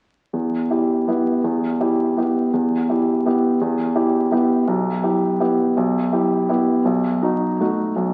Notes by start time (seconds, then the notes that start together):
0.33 E2
0.71 E4 G4
1.08 B3 E4 G4
1.44 E2
1.80 E4 G4
2.17 B3 E4 G4
2.53 E2
2.89 E4 G4
3.26 B3 E4 G4
3.61 E2
3.95 E4 G4
4.31 B3 E4 G4
4.68 B1
5.03 E4 G4
5.40 B3 E4 G4
5.77 B1
6.12 E4 G4
6.49 B3 E4 G4
6.85 B1
7.22 D#4 F#4
7.60 A3 D#4 F#4
7.96 B1